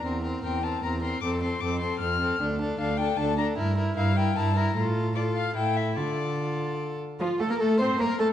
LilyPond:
<<
  \new Staff \with { instrumentName = "Violin" } { \time 3/4 \key f \major \tempo 4 = 152 r4 g''8 a''8 bes''8 c'''8 | d'''8 c'''8 d'''8 c'''8 f'''4 | \key d \minor r4 f''8 g''8 a''8 bes''8 | r4 f''8 g''8 a''8 bes''8 |
r4 d''8 f''8 g''8 e''8 | d''2 r4 | f'8 a'16 bes'16 a'8 c''8 bes'8 a'8 | }
  \new Staff \with { instrumentName = "Violin" } { \time 3/4 \key f \major bes'8 bes'8 bes'8 bes'8 bes'8 bes'8 | a'8 a'8 a'8 a'8 a'8 a'8 | \key d \minor a'8 a'8 a'8 a'8 a'8 a'8 | bes'8 bes'8 bes'8 bes'8 bes'8 bes'8 |
a'4 a'4 a'4 | a'2~ a'8 r8 | f'8 a'16 bes'16 a'8 c''8 bes'8 a'8 | }
  \new Staff \with { instrumentName = "Viola" } { \time 3/4 \key f \major c'8 c'8 c'8 c'8 c'8 c'8 | c'8 c'8 c'8 c'8 c'8 c'8 | \key d \minor d'8 d'8 d'8 d'8 d'8 d'8 | e'8 e'8 e'8 e'8 e'8 e'8 |
f'4 f'4 e'4 | f'2~ f'8 r8 | f8 a16 bes16 a8 c'8 bes8 a8 | }
  \new Staff \with { instrumentName = "Cello" } { \clef bass \time 3/4 \key f \major e,4 e,4 e,4 | f,4 f,4 f,4 | \key d \minor d,4 d,4 d,4 | g,4 g,4 g,4 |
a,2 a,4 | d2~ d8 r8 | f'8 a'16 bes'16 a'8 c''8 bes'8 a'8 | }
>>